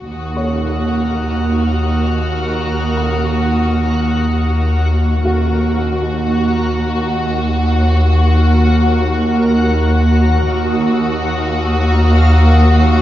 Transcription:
0.02 D#2 F#4 A#4 F#5 D#6 F#6
0.36 C#5 C#6
0.68 F6
2.97 A#5
5.24 D#2 F#4 A#4 F#5
10.44 D#2 F#4 F5 D#6 E6

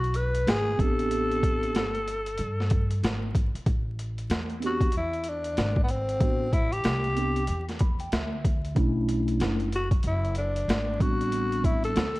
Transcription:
Already playing: B1 F#4
0.04 closed hi-hat
0.14 B4, closed hi-hat
0.35 closed hi-hat
0.47 G#1 G#4, snare, closed hi-hat
0.78 A1 B3 C4 D4 G4 A4, kick, closed hi-hat
0.99 closed hi-hat
1.11 closed hi-hat
1.31 closed hi-hat
1.43 kick, closed hi-hat
1.63 closed hi-hat
1.75 G1, snare, closed hi-hat
1.95 closed hi-hat
2.08 closed hi-hat
2.26 closed hi-hat
2.38 G2, closed hi-hat
2.60 snare
2.70 kick, closed hi-hat
2.91 closed hi-hat
3.03 G#1, snare, closed hi-hat
3.35 kick, closed hi-hat
3.55 muted upright bass stroke, closed hi-hat
3.66 A1, kick, closed hi-hat
3.99 closed hi-hat
4.18 closed hi-hat
4.30 E2, snare, closed hi-hat
4.50 closed hi-hat
4.60 B3 C4 D4 G4, closed hi-hat
4.66 F#4
4.81 kick, closed hi-hat
4.92 E2, closed hi-hat
4.97 E4
5.13 closed hi-hat
5.24 closed hi-hat
5.29 D4
5.44 closed hi-hat
5.57 G#1, snare, closed hi-hat
5.76 kick
5.84 B3
5.88 C4, closed hi-hat
6.09 closed hi-hat
6.20 A1 B3 C4 D4 F#4, kick, closed hi-hat
6.53 E4, kick, closed hi-hat
6.72 G4, closed hi-hat
6.84 C2, snare, closed hi-hat
7.04 closed hi-hat
7.15 B3 C4 D4 G4, closed hi-hat
7.36 closed hi-hat
7.47 E2, closed hi-hat
7.69 snare, closed hi-hat
7.79 B5, kick, closed hi-hat
8.00 G5, closed hi-hat
8.12 D2 E5, snare, closed hi-hat
8.45 kick, closed hi-hat
8.65 closed hi-hat
8.75 B1 A3 C#4 D4 E4, kick, closed hi-hat
9.09 closed hi-hat
9.28 closed hi-hat
9.40 F#1, snare, closed hi-hat
9.60 closed hi-hat
9.72 F#4, closed hi-hat
9.91 kick, closed hi-hat
10.03 F#1, closed hi-hat
10.07 E4
10.25 closed hi-hat
10.35 D4, closed hi-hat
10.56 closed hi-hat
10.68 G#1, snare, closed hi-hat
10.99 A1 G3 B3 C4 D4 F#4, kick, closed hi-hat
11.21 closed hi-hat
11.32 closed hi-hat
11.52 closed hi-hat
11.64 E4, kick, closed hi-hat
11.84 A4, closed hi-hat
11.96 D2, snare, closed hi-hat
12.15 closed hi-hat

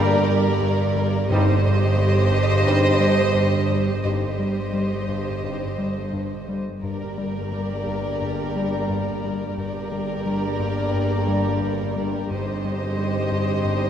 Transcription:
Already playing: G1 G2 G3 A#3 D4 G4 A#4 D5 D6 G6
0.29 G3
0.62 G2
0.96 G3
1.30 G1 G2 G3 C4 D#4 G4 C5 D#5
1.65 G3
1.98 G3
2.32 G2
2.66 G2 G3 C4 D#4
3.00 G3
3.34 G2
3.70 G3
4.04 G1 G2 G3 C4 D#4 G4 C5 D#5
4.39 G3
4.73 G3
5.09 G2
5.43 G2 G3 C4 D#4
5.79 G3
6.13 G2
6.49 G3
6.82 G1 G2 G3 A#3 D4 G4 A#4 D5
7.18 G3
7.53 G3
7.87 G2
8.22 G2
8.56 G3
8.90 G2
9.24 G3
9.57 G1 G2 G3 A#3 D4 G4 A#4 D5
9.92 G3
10.26 G3
10.60 G2
10.94 G2
11.28 G3
11.62 G2
11.96 G3
12.29 G1 G2 G3 C4 D#4 G4 C5 D#5
12.65 G3
12.98 G3
13.31 G2
13.65 G2

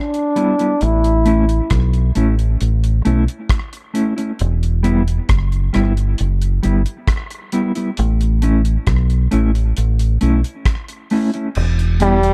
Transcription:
Already playing: D4
0.14 closed hi-hat
0.36 G3 B3 E4, closed hi-hat
0.59 G3 B3 E4, closed hi-hat
0.81 A1 E4, closed hi-hat
1.04 closed hi-hat
1.25 A3 C#4 E4, closed hi-hat
1.49 closed hi-hat
1.70 B1, kick, cross-stick, closed hi-hat
1.93 closed hi-hat
2.15 A1 A3 C#4 E4, closed hi-hat
2.39 closed hi-hat
2.61 A1, closed hi-hat
2.84 closed hi-hat
3.05 B1 A3 C#4 E4, closed hi-hat
3.28 closed hi-hat
3.49 kick, cross-stick, closed hi-hat
3.73 closed hi-hat
3.94 A3 C#4 E4, closed hi-hat
4.16 A3 C#4 E4, closed hi-hat
4.39 E1, closed hi-hat
4.63 closed hi-hat
4.83 G3 B3 E4, closed hi-hat
5.08 closed hi-hat
5.29 F#1, kick, cross-stick, closed hi-hat
5.52 closed hi-hat
5.73 G1 G3 B3 E4, cross-stick, closed hi-hat
5.97 closed hi-hat
6.18 F#1, closed hi-hat
6.42 closed hi-hat
6.63 G1 G3 B3 E4, closed hi-hat
6.86 closed hi-hat
7.07 kick, cross-stick, closed hi-hat
7.30 closed hi-hat
7.52 G3 B3 E4, closed hi-hat
7.75 G3 B3 E4, closed hi-hat
7.97 A1, closed hi-hat
8.21 closed hi-hat
8.42 A3 C#4 E4, closed hi-hat
8.65 closed hi-hat
8.87 B1, kick, cross-stick, closed hi-hat
9.10 closed hi-hat
9.31 A1 A3 C#4 E4, closed hi-hat
9.55 closed hi-hat
9.77 A1, closed hi-hat
9.99 closed hi-hat
10.21 B1 A3 C#4 E4, closed hi-hat
10.44 closed hi-hat
10.65 kick, cross-stick, closed hi-hat
10.88 closed hi-hat
11.10 A3 C#4 E4, open hi-hat
11.34 A3 C#4 E4, closed hi-hat
11.55 E1, crash
11.79 closed hi-hat
12.00 G3 B3 E4, closed hi-hat
12.23 closed hi-hat

